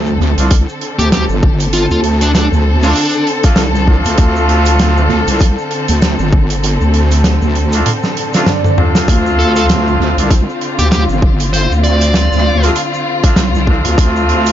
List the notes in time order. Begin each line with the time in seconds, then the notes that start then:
Already playing: D2 D3 C4 A4
0.06 shaker
0.20 D2, snare
0.38 C2 A3 C4 D4 F4, closed hi-hat, shaker
0.50 kick, closed hi-hat, shaker
0.68 shaker
0.81 closed hi-hat
0.99 D2 G4, closed hi-hat, shaker
1.12 G4, snare, closed hi-hat, shaker
1.29 G1, shaker
1.43 kick
1.60 closed hi-hat, shaker
1.73 F4, closed hi-hat, shaker
1.91 D2 F4, shaker
2.04 closed hi-hat
2.21 D4, closed hi-hat, shaker
2.35 D4, snare, closed hi-hat, shaker
2.52 D2, shaker
2.83 A3 C4 D4 F4, closed hi-hat, shaker
2.87 closed hi-hat
2.89 closed hi-hat
2.93 closed hi-hat
2.96 closed hi-hat, shaker
3.01 closed hi-hat
3.05 closed hi-hat
3.09 closed hi-hat
3.14 shaker
3.27 closed hi-hat
3.43 A3 C4 D4 F4, kick, closed hi-hat, shaker
3.56 C2, snare, closed hi-hat, shaker
3.75 shaker
3.87 A3 C4 D4 F4, kick
4.05 D2, closed hi-hat, shaker
4.18 D2, kick, closed hi-hat, shaker
4.36 shaker
4.49 closed hi-hat
4.66 closed hi-hat, shaker
4.79 snare, closed hi-hat, shaker
4.97 shaker
5.09 D2, snare
5.28 C2 A3 C4 D4 F4, closed hi-hat, shaker
5.39 kick, closed hi-hat, shaker
5.58 shaker
5.71 closed hi-hat
5.88 D2, closed hi-hat, shaker
6.02 snare, closed hi-hat, shaker
6.19 G1, shaker
6.33 kick
6.50 closed hi-hat, shaker
6.63 closed hi-hat, shaker
6.81 D2, shaker
6.94 closed hi-hat
7.11 closed hi-hat, shaker
7.24 snare, closed hi-hat, shaker
7.42 D2, shaker
7.55 closed hi-hat
7.72 A3 C4 D4 F4, closed hi-hat, shaker
7.86 closed hi-hat, high tom, swell, shaker
8.03 snare, shaker
8.17 closed hi-hat
8.33 A3 C4 D4 F4, snare, closed hi-hat, shaker
8.46 snare, closed hi-hat, mid tom, shaker
8.64 mid tom, shaker
8.77 A3 C4 D4 F4, mid tom
8.95 snare, closed hi-hat, shaker
9.08 D2 F4, kick, closed hi-hat, shaker
9.26 shaker
9.39 A4, closed hi-hat
9.56 A4, closed hi-hat, shaker
9.69 snare, closed hi-hat, shaker
9.87 shaker
10.00 D2, snare
10.18 C2 A3 C4 D4 F4, closed hi-hat, shaker
10.31 kick, closed hi-hat, shaker
10.49 shaker
10.61 closed hi-hat
10.79 D2 G4, closed hi-hat, shaker
10.92 G4, snare, closed hi-hat, shaker
11.09 G1, shaker
11.22 kick
11.40 closed hi-hat, shaker
11.53 C5, closed hi-hat, shaker
11.71 D2, shaker
11.83 D5, closed hi-hat
12.01 closed hi-hat, shaker
12.14 snare, closed hi-hat, shaker
12.32 D2, shaker
12.38 snare
12.62 A3 C4 D4 F4, closed hi-hat, shaker
12.76 closed hi-hat, shaker
12.94 shaker
13.24 A3 C4 D4 F4, kick, closed hi-hat, shaker
13.36 C2, snare, closed hi-hat, shaker
13.55 shaker
13.67 A3 C4 D4 F4, kick
13.85 D2, closed hi-hat, shaker
13.98 D2, kick, closed hi-hat, shaker
14.16 shaker
14.29 closed hi-hat
14.46 closed hi-hat, shaker